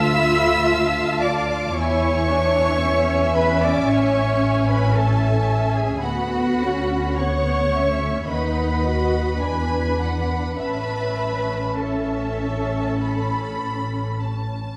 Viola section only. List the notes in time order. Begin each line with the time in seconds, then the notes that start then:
Already playing: F4
1.77 E4
2.29 D4
2.83 C#4
6.05 B3
6.63 C#4
7.21 B3
7.77 C#4
8.31 D#4
8.86 F#4
9.41 D4
10.59 C#4